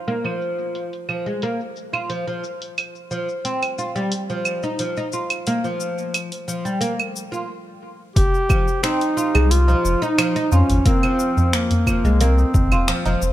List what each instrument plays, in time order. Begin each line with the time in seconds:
0.08 oud A#3, open hi-hat, shaker
0.24 oud F3, claves, shaker
0.41 shaker
0.59 shaker
0.75 open hi-hat, shaker
0.93 open hi-hat, shaker
1.09 oud F3, claves, shaker
1.26 oud G#3, shaker
1.42 oud A#3, open hi-hat, shaker
1.60 shaker
1.76 shaker
1.93 oud F4, claves, shaker
2.10 oud F3, open hi-hat, shaker
2.27 oud F3, shaker
2.44 shaker
2.62 open hi-hat, shaker
2.78 open hi-hat, claves, shaker
2.95 shaker
3.11 oud F3, shaker
3.29 shaker
3.45 oud C4, open hi-hat, shaker
3.62 open hi-hat, claves, shaker
3.78 oud F4, shaker
3.96 oud G3, shaker
4.12 open hi-hat, shaker
4.30 oud F3, shaker
4.45 claves, shaker
4.63 oud D#4, shaker
4.79 oud F3, open hi-hat, shaker
4.97 oud D#4, shaker
5.12 oud F4, shaker
5.30 open hi-hat, claves, shaker
5.47 oud A#3, open hi-hat, shaker
5.64 oud F3, shaker
5.80 shaker
5.98 shaker
6.14 open hi-hat, claves, shaker
6.32 open hi-hat, shaker
6.48 oud F3, shaker
6.65 oud G3, shaker
6.81 oud A#3, open hi-hat, shaker
7.00 claves, shaker
7.16 shaker
7.32 oud F4, shaker
8.16 sub bass F1, duduk G4, kick, open hi-hat, shaker
8.34 shaker
8.49 oud F3, kick, claves, shaker
8.68 shaker
8.83 oud C4, duduk D#4, finger snap, open hi-hat, shaker
9.01 open hi-hat, shaker
9.17 oud F4, shaker
9.35 sub bass C2, oud G#3, claves, shaker
9.51 duduk F4, open hi-hat, shaker
9.68 oud F3, tabla na, shaker
9.84 sub bass F1, tabla tin, shaker
10.02 oud D#4, duduk D#4, shaker
10.18 oud F3, finger snap, open hi-hat, claves, shaker
10.36 oud D#4, open hi-hat, shaker
10.52 sub bass F2, duduk C#4, oud F4, tabla na, tabla tin, shaker
10.70 sub bass G#1, open hi-hat, tabla ge, shaker
10.86 oud A#3, duduk C4, kick, open hi-hat, shaker
11.03 oud F3, claves, shaker
11.19 shaker
11.37 tabla na, tabla ge, shaker
11.53 duduk A#3, finger snap, open hi-hat, shaker
11.71 open hi-hat, tabla ge, shaker
11.87 oud F3, kick, claves, shaker
12.04 sub bass C2, oud G#3, shaker
12.21 oud A#3, duduk C4, open hi-hat, tabla tin, shaker
12.38 tabla na, shaker
12.54 sub bass G#1, kick, tabla na, tabla ge, shaker
12.72 sub bass D#1, oud F4, claves, shaker
12.88 oud F3, finger snap, open hi-hat, shaker
13.06 sub bass F1, oud F3, open hi-hat, tabla na, tabla tin, shaker
13.22 sub bass F1, shaker